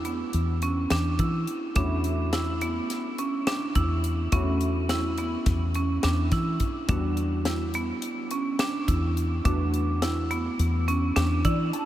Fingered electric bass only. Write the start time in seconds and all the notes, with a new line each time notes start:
Already playing: E2
0.34 E2
0.91 E2
1.19 E3
1.76 E2
3.76 E2
4.32 E2
5.46 E2
6.04 E2
6.32 E3
6.89 E2
8.88 E2
9.45 E2
10.59 E2
11.16 E2
11.45 E3